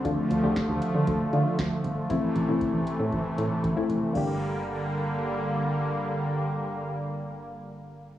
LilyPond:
<<
  \new Staff \with { instrumentName = "Synth pluck" } { \time 4/4 \key g \dorian \tempo 4 = 117 <a d' f'>8. <a d' g'>4. r16 <a d' f'>4~ <a d' f'>16 r16 | <a c' e'>8. <a c' e'>4.~ <a c' e'>16 r8. <a c' e'>8. | <bes d' g'>1~ | <bes d' g'>1 | }
  \new Staff \with { instrumentName = "Analog synth pad" } { \clef bass \time 4/4 \key g \dorian <d f a>1 | <c e a>1 | <d g bes>1~ | <d g bes>1 | }
  \new Staff \with { instrumentName = "FM bass" } { \clef bass \time 4/4 \key g \dorian d,16 r16 d,16 d,16 r16 d,16 r16 d16 d,16 r16 d16 r16 d,16 r16 g,,16 r16 | a,,16 r16 a,,16 a,,16 r16 a,,16 r16 a,16 a,,16 r16 a,16 r16 a,,16 r16 f,,16 r16 | g,,1~ | g,,1 | }
  \new DrumStaff \with { instrumentName = "Drums" } \drummode { \time 4/4 <hh bd>8 hh8 <hh bd sn>8 hh8 <hh bd>8 hh8 <hh bd sn>8 hh8 | <hh bd>8 hh8 <hh bd>8 hh8 <hh bd>8 hh8 <hh bd>8 hh8 | <cymc bd>4 r4 r4 r4 | r4 r4 r4 r4 | }
>>